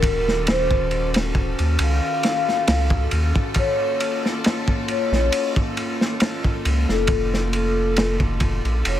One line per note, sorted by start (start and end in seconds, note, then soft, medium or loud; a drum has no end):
0.00 1.55 D#1 medium
0.00 3.52 D#3 medium
0.00 9.00 C#4 medium
0.00 3.52 F#4 medium
0.00 9.00 A4 medium
0.00 0.42 A#4 loud
0.00 kick loud
0.00 ride medium
0.28 snare soft
0.47 1.09 C5 loud
0.47 snare loud
0.47 ride medium
0.71 kick medium
0.91 ride medium
1.14 snare loud
1.14 ride medium
1.35 kick medium
1.59 1.77 D#2 loud
1.59 ride medium
1.79 2.00 C#2 loud
1.79 3.41 F5 loud
1.79 ride loud
2.23 snare medium
2.23 ride medium
2.49 snare soft
2.68 3.07 C#2 medium
2.68 snare loud
2.68 ride loud
2.90 kick loud
3.11 3.33 D#2 medium
3.11 ride medium
3.36 kick loud
3.54 9.00 A#3 medium
3.54 9.00 F4 loud
3.54 4.18 C#5 loud
3.54 kick loud
3.54 ride medium
4.00 ride medium
4.25 snare soft
4.44 snare loud
4.44 ride medium
4.68 kick loud
4.88 5.50 C#5 loud
4.88 ride medium
5.12 5.30 A#1 loud
5.12 snare soft
5.32 ride medium
5.56 kick medium
5.77 ride medium
6.01 snare medium
6.20 snare loud
6.20 ride medium
6.44 kick loud
6.65 6.86 C#2 medium
6.65 ride medium
6.89 8.61 F1 loud
6.89 7.48 A4 loud
6.89 snare soft
7.07 kick loud
7.07 ride medium
7.34 snare soft
7.53 8.15 A4 loud
7.53 ride medium
7.96 snare loud
7.96 ride medium
8.20 kick medium
8.40 kick loud
8.40 ride medium
8.65 8.83 A#1 loud
8.65 ride soft
8.85 9.00 F1 loud
8.85 9.00 C#5 loud
8.85 ride loud